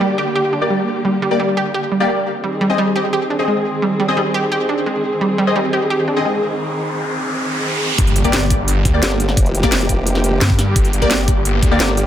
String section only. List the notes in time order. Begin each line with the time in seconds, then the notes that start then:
Already playing: D3 A#3 G4
2.44 D#3 C4 G#4
7.99 D3 A#3 G4